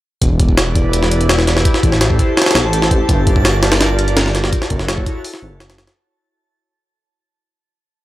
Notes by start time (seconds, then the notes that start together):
0.21 E1 E4 G4 B4 D5 A5, kick, closed hi-hat
0.40 kick, closed hi-hat
0.49 kick
0.57 snare, closed hi-hat
0.75 kick, closed hi-hat
0.93 closed hi-hat
1.03 snare
1.11 closed hi-hat
1.21 closed hi-hat
1.29 snare, closed hi-hat
1.38 snare
1.47 snare, closed hi-hat
1.57 snare
1.65 A4 C5, kick, closed hi-hat
1.74 snare
1.83 A1, kick, closed hi-hat
1.92 snare
2.01 snare, closed hi-hat
2.10 kick
2.19 kick, closed hi-hat
2.37 snare, closed hi-hat
2.42 snare, closed hi-hat
2.46 snare, closed hi-hat
2.51 snare, closed hi-hat
2.55 B1, snare, closed hi-hat
2.64 A1
2.73 closed hi-hat
2.82 snare
2.91 kick, closed hi-hat
3.09 G1 F4 A#4 D5, kick, closed hi-hat
3.27 kick, closed hi-hat
3.36 kick
3.45 snare, closed hi-hat
3.63 snare, closed hi-hat
3.72 snare, closed hi-hat
3.81 snare, closed hi-hat
3.99 closed hi-hat
4.08 closed hi-hat
4.17 snare, closed hi-hat
4.26 snare
4.35 snare, closed hi-hat
4.44 snare
4.52 E4 F#4 A4 C#5, kick, closed hi-hat
4.62 snare
4.70 F#1, kick, closed hi-hat
4.79 snare
4.88 snare, closed hi-hat
4.98 kick
5.06 kick, closed hi-hat
5.24 open hi-hat
5.34 snare
5.42 G#1
5.51 F#1
5.60 snare, closed hi-hat
5.70 snare, closed hi-hat
5.78 snare, closed hi-hat
5.87 snare, closed hi-hat